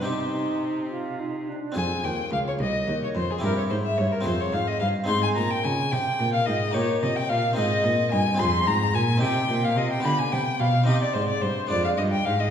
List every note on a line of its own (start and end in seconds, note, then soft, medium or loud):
0.02 1.52 C3 soft
0.02 1.70 C4 soft
0.02 1.70 D#4 soft
0.02 1.71 G4 soft
0.06 1.51 C3 soft
0.06 0.85 D#4 soft
0.06 0.91 C5 medium
0.90 1.21 F4 medium
1.20 1.50 D#4 soft
1.48 1.76 D4 soft
1.72 2.01 C4 soft
1.72 3.38 F4 soft
1.72 3.38 G#4 soft
1.76 2.02 F2 medium
1.76 2.02 F2 soft
1.76 2.06 G#5 medium
1.76 1.84 G#5 medium
2.04 2.29 D#2 soft
2.04 2.30 D#2 soft
2.04 2.10 G5 medium
2.04 2.32 G5 medium
2.31 2.56 C#2 soft
2.31 2.58 C#2 medium
2.31 2.46 F5 medium
2.31 2.38 F5 medium
2.47 2.60 C#5 medium
2.47 2.53 C#5 medium
2.59 2.84 C2 soft
2.59 2.86 C2 medium
2.59 3.01 D#5 medium
2.87 3.13 D#2 medium
2.87 3.13 D#2 soft
3.03 3.16 C#5 medium
3.03 3.09 C#5 medium
3.15 3.40 F2 soft
3.15 3.41 F2 medium
3.15 3.32 C5 medium
3.15 3.23 C5 medium
3.31 3.43 G#4 medium
3.31 3.37 G#4 medium
3.39 3.68 G2 medium
3.39 3.68 C4 soft
3.39 4.22 E4 soft
3.39 4.23 G4 soft
3.43 3.68 G2 soft
3.43 3.57 A#4 medium
3.58 3.71 C#5 medium
3.58 3.63 C#5 medium
3.70 3.96 G#2 soft
3.70 3.97 G#2 medium
3.70 3.76 C5 medium
3.70 3.78 C5 medium
3.85 3.99 E5 medium
3.98 4.23 G2 soft
3.98 4.24 G2 medium
3.98 4.13 C#5 medium
3.98 4.07 C#5 medium
4.12 4.27 A#4 medium
4.12 4.21 A#4 medium
4.21 4.50 F2 soft
4.21 4.77 C4 soft
4.21 5.05 F4 soft
4.21 5.05 G#4 soft
4.26 4.52 F2 medium
4.26 4.42 C5 medium
4.26 4.41 C5 medium
4.41 4.55 C#5 medium
4.41 4.57 C#5 medium
4.52 4.79 G#2 medium
4.52 4.78 G#2 soft
4.52 4.69 F5 medium
4.52 4.71 F5 medium
4.68 4.80 D#5 medium
4.68 4.85 D#5 medium
4.80 5.06 G2 soft
4.80 5.08 G2 medium
4.80 4.88 F5 medium
4.80 5.11 F5 medium
5.04 6.69 C4 soft
5.04 6.69 D#4 soft
5.04 6.70 G#4 soft
5.08 5.34 G#2 soft
5.08 5.35 G#2 medium
5.08 5.22 C6 medium
5.08 5.26 C6 medium
5.23 5.29 G#5 medium
5.23 5.40 G#5 medium
5.35 5.62 A#2 soft
5.35 5.63 A#2 medium
5.35 5.52 A#5 medium
5.35 5.55 A#5 medium
5.51 5.65 G5 medium
5.51 5.66 G5 medium
5.63 5.90 C#3 soft
5.63 5.91 C#3 medium
5.63 5.93 G#5 medium
5.63 5.95 G#5 medium
5.92 6.18 C3 medium
5.92 6.18 C3 soft
5.92 6.33 G5 medium
5.92 6.36 G5 medium
6.19 6.45 A#2 soft
6.19 6.46 A#2 medium
6.33 6.48 F5 medium
6.33 6.49 F5 medium
6.46 6.72 G#2 soft
6.46 6.74 G#2 medium
6.46 6.76 D#5 medium
6.46 6.74 D#5 medium
6.71 7.01 A#2 medium
6.71 7.53 A#3 soft
6.71 7.53 D#4 soft
6.71 7.55 G4 soft
6.71 7.01 C#5 medium
6.76 7.01 A#2 soft
7.02 7.29 C3 medium
7.02 7.28 C3 soft
7.02 7.17 D#5 medium
7.02 7.18 D#5 medium
7.16 7.29 G5 medium
7.16 7.31 G5 medium
7.29 7.56 A#2 medium
7.29 7.55 A#2 soft
7.29 7.56 F5 medium
7.53 7.83 G#2 medium
7.53 8.33 C4 soft
7.53 8.36 D#4 soft
7.53 8.36 G#4 soft
7.53 8.13 D#5 medium
7.53 8.11 D#5 medium
7.58 7.83 G#2 soft
7.84 8.09 A#2 soft
7.84 8.10 A#2 medium
8.11 8.37 G2 soft
8.11 8.38 G2 medium
8.11 8.41 G#5 medium
8.11 8.40 G#5 medium
8.35 8.91 C4 soft
8.35 9.18 F4 soft
8.35 9.19 G#4 soft
8.39 8.64 F2 soft
8.39 8.69 F2 medium
8.39 8.69 C6 medium
8.67 8.92 G#2 soft
8.67 8.94 G#2 medium
8.67 8.96 A#5 medium
8.67 8.94 A#5 medium
8.94 9.19 A#2 soft
8.94 9.23 A#2 medium
8.94 9.01 G#5 medium
8.94 9.22 G#5 medium
9.17 10.00 C4 soft
9.17 10.00 D#4 soft
9.17 10.01 G4 soft
9.21 9.47 C3 soft
9.21 9.49 C3 medium
9.21 9.65 G5 medium
9.21 9.66 G5 medium
9.49 9.74 A#2 soft
9.49 9.78 A#2 medium
9.63 9.77 F5 medium
9.63 9.80 F5 medium
9.76 10.02 C3 soft
9.76 10.04 C3 medium
9.76 9.93 D#5 medium
9.76 9.92 D#5 medium
9.91 10.04 G5 medium
9.91 10.07 G5 medium
10.00 10.82 B3 soft
10.00 10.83 F4 soft
10.00 10.84 G4 soft
10.04 10.29 D3 soft
10.04 10.12 D3 medium
10.04 10.20 B5 medium
10.19 10.32 G#5 medium
10.19 10.34 G#5 medium
10.32 10.57 C3 soft
10.32 10.41 C3 medium
10.32 10.61 G5 medium
10.32 10.60 G5 medium
10.60 10.85 B2 medium
10.60 10.68 B2 medium
10.60 10.86 F5 medium
10.60 10.87 F5 medium
10.84 10.95 C3 medium
10.84 11.66 C4 soft
10.84 11.67 D#4 soft
10.84 11.67 G4 soft
10.84 11.01 D#5 medium
10.84 11.03 D#5 medium
10.88 11.13 C3 soft
11.02 11.14 D5 medium
11.02 11.15 D5 medium
11.14 11.23 G#2 soft
11.14 11.40 G#2 soft
11.14 11.28 C5 medium
11.14 11.21 C5 medium
11.28 11.43 D5 medium
11.28 11.35 D5 medium
11.42 11.50 G2 medium
11.42 11.67 G2 soft
11.42 11.69 C5 medium
11.67 11.97 F2 medium
11.67 11.96 G#3 soft
11.67 12.50 D4 soft
11.67 12.50 F4 soft
11.67 11.86 D5 medium
11.67 11.84 D5 medium
11.72 11.96 F2 soft
11.84 11.90 F5 medium
11.84 11.98 F5 medium
11.97 12.25 G2 medium
11.97 12.24 G2 soft
11.97 12.03 D#5 medium
11.97 12.12 D#5 medium
12.12 12.27 G5 medium
12.12 12.26 G5 medium
12.25 12.50 G#2 soft
12.25 12.42 F5 medium
12.25 12.33 F5 medium
12.39 12.45 D#5 medium
12.39 12.50 D#5 medium